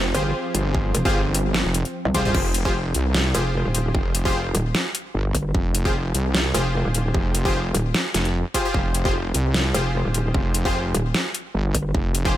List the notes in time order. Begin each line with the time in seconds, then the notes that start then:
Already playing: F1 F3 C4 C5 G5
0.14 G1 F4 G4 G#4 C5, closed hi-hat
0.54 G1, closed hi-hat
0.75 kick
0.95 F1, closed hi-hat
1.05 G1 F4 G4 G#4 C5, kick
1.35 closed hi-hat
1.54 snare
1.65 F1
1.74 closed hi-hat
1.85 closed hi-hat
2.05 C2, high tom
2.14 F4 G4 G#4 C5, kick, closed hi-hat, mid tom
2.25 F4 G4 G#4 C5, mid tom
2.34 F1, kick, crash
2.54 closed hi-hat
2.65 F4 G4 G#4 C5, kick
2.94 C2, closed hi-hat
3.15 snare
3.35 F1 F4 G4 G#4 C5, closed hi-hat
3.65 D#1
3.75 closed hi-hat
3.95 F1, kick
4.15 closed hi-hat
4.25 F4 G4 G#4 C5, kick
4.55 D#1, closed hi-hat
4.75 snare
4.95 closed hi-hat
5.14 G1
5.35 G1, kick, closed hi-hat
5.55 F1, kick
5.75 closed hi-hat
5.85 F4 G4 G#4 C5, kick
6.14 C2, closed hi-hat
6.35 snare
6.54 F1 F4 G4 G#4 C5, closed hi-hat
6.85 D#1
6.95 closed hi-hat
7.14 F1, kick
7.35 closed hi-hat
7.45 F4 G4 G#4 C5, kick
7.74 D#1, closed hi-hat
7.94 snare
8.14 F1, snare, closed hi-hat
8.25 closed hi-hat
8.54 F4 G4 G#4 C5, kick, closed hi-hat
8.65 F4 G4 G#4 C5
8.74 F1, kick
8.94 closed hi-hat
9.05 F4 G4 G#4 C5, kick
9.34 C2, closed hi-hat
9.54 snare
9.74 F1 F4 G4 G#4 C5, closed hi-hat
10.05 D#1
10.14 closed hi-hat
10.34 F1, kick
10.54 closed hi-hat
10.65 F4 G4 G#4 C5, kick
10.95 D#1, closed hi-hat
11.14 snare
11.35 closed hi-hat
11.55 G1
11.75 G1, kick, closed hi-hat
11.95 F1, kick
12.15 closed hi-hat
12.25 F4 G4 G#4 C5, kick